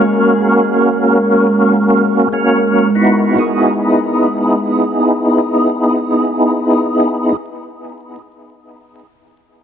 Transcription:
0.00 3.39 G#3 medium
0.00 2.27 A#3 medium
0.00 2.28 C#4 medium
0.00 2.28 F#4 medium
0.00 3.39 G#4 medium
0.00 2.29 A#4 medium
0.00 3.39 A#4 medium
2.32 2.90 A#3 medium
2.32 2.90 C#4 medium
2.32 2.90 F#4 medium
2.32 2.90 A#4 medium
2.95 3.34 B3 medium
2.95 3.36 D#4 medium
2.95 3.37 E4 medium
2.95 3.80 F#4 medium
3.36 7.33 B3 medium
3.36 7.34 D#4 medium
3.36 7.35 E4 medium
3.36 7.37 G#4 medium

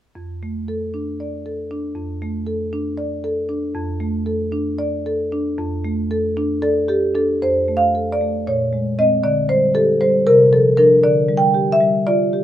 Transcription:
0.15 1.93 F2 soft
0.43 0.84 A3 soft
0.68 1.10 A4 soft
0.94 1.35 D4 soft
1.20 1.61 D5 soft
1.46 1.87 A4 soft
1.71 1.97 D4 soft
1.95 3.72 F2 soft
2.22 2.64 A3 soft
2.47 2.89 A4 soft
2.73 3.15 D4 soft
2.98 3.40 D5 soft
3.24 3.66 A4 soft
3.49 3.76 D4 soft
3.75 5.53 F2 medium
4.00 4.43 A3 soft
4.26 4.68 A4 soft
4.52 4.94 D4 medium
4.79 5.21 D5 medium
5.06 5.48 A4 medium
5.32 5.74 D4 medium
5.58 7.39 F2 medium
5.85 6.27 A3 medium
6.11 6.53 A4 medium
6.37 6.79 D4 medium
6.62 6.88 A4 medium
6.62 7.06 D5 medium
6.88 7.15 G4 medium
6.88 7.14 A4 soft
7.15 7.42 D4 soft
7.15 7.42 A4 medium
7.42 8.44 F2 soft
7.42 7.76 C5 medium
7.68 8.11 A3 soft
7.77 8.11 F5 medium
7.95 8.37 A4 soft
8.12 8.46 D5 medium
8.21 8.47 A3 soft
8.47 9.22 A#2 medium
8.47 8.97 C#5 medium
8.73 8.97 G#3 soft
8.99 9.22 G#3 soft
8.99 9.22 C4 soft
8.99 9.23 D#5 medium
9.23 10.23 D3 medium
9.23 9.48 D5 medium
9.49 9.90 G3 soft
9.49 9.74 C5 medium
9.74 10.16 G4 soft
9.74 10.00 A4 medium
10.01 10.27 G3 soft
10.01 10.25 C5 medium
10.27 11.01 C3 medium
10.27 10.51 A#4 medium
10.53 10.77 F3 soft
10.53 10.77 A4 medium
10.77 11.01 F3 soft
10.77 11.01 D4 soft
10.77 11.02 A#4 medium
11.04 12.44 D3 medium
11.04 11.36 D5 medium
11.28 11.70 G3 soft
11.37 11.70 G5 medium
11.54 11.96 G4 soft
11.72 12.05 E5 medium
11.80 12.22 G3 soft
12.07 12.44 F4 soft
12.07 12.44 D5 medium
12.33 12.44 G4 soft

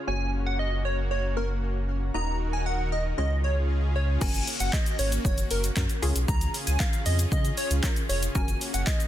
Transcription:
0.00 2.11 C#4 medium
0.07 2.11 F#1 medium
0.07 1.34 A#3 medium
0.07 2.13 A#3 medium
0.07 1.34 C#4 medium
0.07 1.34 F#4 medium
0.07 2.13 F#4 medium
0.07 1.35 C#5 medium
0.07 0.31 G#5 loud
0.46 0.58 F#5 medium
0.59 0.82 D#5 medium
0.85 0.97 C#5 medium
1.11 1.34 C#5 medium
1.37 2.13 A#3 medium
1.37 2.15 C#4 soft
1.37 2.14 F#4 soft
1.37 1.48 A#4 medium
1.37 2.15 C#5 medium
2.14 3.14 D#1 medium
2.14 3.17 D#3 medium
2.14 3.16 A#3 medium
2.14 3.16 D#4 medium
2.14 3.17 D#4 medium
2.14 3.17 F#4 medium
2.14 3.16 F#4 medium
2.14 3.17 A#4 medium
2.14 3.16 D#5 medium
2.14 2.38 A#5 loud
2.53 2.65 G#5 medium
2.66 2.89 F#5 medium
2.92 3.04 D#5 medium
3.18 4.17 C#2 medium
3.18 4.20 C#3 medium
3.18 4.19 G#3 medium
3.18 4.19 C#4 medium
3.18 4.20 C#4 medium
3.18 4.20 F4 medium
3.18 4.20 G#4 medium
3.18 4.20 C#5 medium
3.18 3.41 D#5 medium
3.44 3.55 C#5 medium
3.96 4.07 C#5 medium
4.21 4.41 F#1 loud
4.21 6.01 A#3 medium
4.21 4.69 C#4 medium
4.21 6.01 C#4 medium
4.21 4.70 F#4 medium
4.21 6.01 F#4 medium
4.21 4.70 A#4 medium
4.21 4.45 G#5 loud
4.21 kick loud
4.21 crash loud
4.21 shaker medium
4.34 closed hi-hat medium
4.34 shaker soft
4.47 open hi-hat medium
4.47 shaker medium
4.60 4.70 F#1 loud
4.60 4.72 F#5 medium
4.60 closed hi-hat medium
4.60 shaker medium
4.73 4.96 D#5 medium
4.73 kick loud
4.73 clap loud
4.73 shaker medium
4.86 closed hi-hat medium
4.86 shaker medium
4.99 5.19 G#1 loud
4.99 5.11 C#5 medium
4.99 open hi-hat medium
4.99 shaker medium
5.12 closed hi-hat medium
5.12 shaker medium
5.25 5.45 F#1 loud
5.25 5.48 C#5 medium
5.25 kick loud
5.25 shaker medium
5.38 closed hi-hat medium
5.38 shaker medium
5.51 5.70 F#1 loud
5.51 5.62 A#4 medium
5.51 open hi-hat medium
5.51 shaker medium
5.64 closed hi-hat medium
5.64 shaker medium
5.76 5.86 F#2 loud
5.76 6.01 C#4 medium
5.76 6.01 F#4 medium
5.76 6.01 A#4 loud
5.76 kick loud
5.76 clap loud
5.76 shaker medium
5.89 closed hi-hat medium
5.89 shaker medium
6.02 6.12 C#2 loud
6.02 8.33 C#3 medium
6.02 6.85 C#4 loud
6.02 9.08 C#4 medium
6.02 6.85 F4 medium
6.02 8.33 F4 medium
6.02 8.33 G#4 medium
6.02 6.85 G#4 loud
6.02 open hi-hat medium
6.02 shaker medium
6.15 6.25 B1 medium
6.15 closed hi-hat medium
6.15 shaker medium
6.28 6.48 C#2 loud
6.28 6.51 A#5 loud
6.28 kick loud
6.28 shaker medium
6.41 closed hi-hat medium
6.41 shaker medium
6.54 open hi-hat medium
6.54 shaker medium
6.67 6.77 C#2 medium
6.67 6.79 G#5 medium
6.67 closed hi-hat medium
6.67 shaker medium
6.80 7.03 F5 medium
6.80 kick loud
6.80 clap loud
6.80 shaker medium
6.93 closed hi-hat medium
6.93 shaker medium
7.06 7.26 F2 loud
7.06 7.17 D#5 medium
7.06 open hi-hat medium
7.06 shaker medium
7.19 closed hi-hat medium
7.19 shaker medium
7.32 7.51 C#3 loud
7.32 7.55 D#5 loud
7.32 kick loud
7.32 shaker medium
7.45 closed hi-hat medium
7.45 shaker medium
7.57 7.69 C#5 medium
7.57 open hi-hat medium
7.57 shaker medium
7.71 7.80 C#2 medium
7.71 closed hi-hat medium
7.71 shaker medium
7.83 8.07 C#4 medium
7.83 8.08 F4 medium
7.83 8.08 A#4 loud
7.83 kick loud
7.83 clap loud
7.83 shaker medium
7.96 closed hi-hat medium
7.96 shaker medium
8.09 8.29 F1 loud
8.09 8.21 C#5 medium
8.09 open hi-hat medium
8.09 shaker medium
8.23 closed hi-hat loud
8.23 shaker loud
8.35 8.55 F#1 loud
8.35 9.08 A#3 medium
8.35 8.83 C#4 medium
8.35 8.83 F#4 medium
8.35 9.08 F#4 medium
8.35 8.84 A#4 medium
8.35 8.58 G#5 loud
8.35 kick loud
8.35 shaker medium
8.48 closed hi-hat soft
8.48 shaker soft
8.61 open hi-hat medium
8.61 shaker soft
8.74 8.84 F#1 loud
8.74 8.86 F#5 medium
8.74 closed hi-hat medium
8.74 shaker medium
8.87 9.08 D#5 loud
8.87 kick loud
8.87 clap loud
8.87 shaker medium
9.00 closed hi-hat medium
9.00 shaker medium

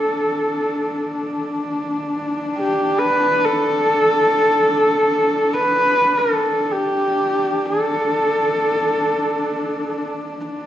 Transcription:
0.00 6.33 D4 medium
0.00 1.46 A4 medium
2.58 3.00 G4 medium
2.99 3.46 B4 medium
3.45 5.55 A4 loud
5.54 6.19 B4 medium
6.18 6.73 A4 medium
6.33 10.66 D4 medium
6.71 7.68 G4 medium
7.66 10.04 A4 medium

